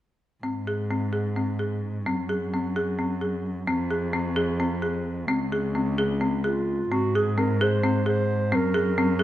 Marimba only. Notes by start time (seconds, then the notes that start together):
0.43 C4
0.67 G#4
0.90 C4
1.13 G#4
1.37 C4
1.59 G#4
2.06 C4
2.29 G#4
2.54 C4
2.76 G#4
2.99 C4
3.21 G#4
3.67 C4
3.91 G#4
4.13 C4
4.36 G#4
4.60 C4
4.82 G#4
5.28 C4
5.52 G#4
5.75 C4
5.98 G#4
6.21 C4
6.44 G#4
6.92 C4
7.15 G#4
7.38 C4
7.61 G#4
7.84 C4
8.06 G#4
8.52 C4
8.74 G#4
8.98 C4
9.19 G#4